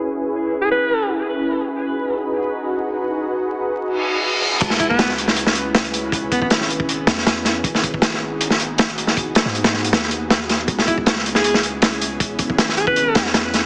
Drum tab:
CC |----------------|----------------|----------------|x---------------|
HH |----------------|----------------|----------------|x-x-x-x-x-x-xxx-|
SD |----------------|----------------|----------------|-o--oo-o-o--o---|
BD |----------------|----------------|----------------|o-oo------------|

CC |----------------|----------------|----------------|----------------|
HH |x-x-x-x-x-x-x-x-|x-x-x---x-x-xxx-|x-x-xx-xx-x-x-x-|x-x-x-x-x-x-xxx-|
SD |----oo----ooo-o-|-o--oo---o--o--o|--oo-oo-oo--o-o-|-o--oo-o-o--o---|
BD |o-oo---o--------|o-oo------------|o---------------|o-oo------------|

CC |----------------|
HH |x-x-x-x-x-x-x-x-|
SD |----oo----ooo-o-|
BD |o-oo---o--------|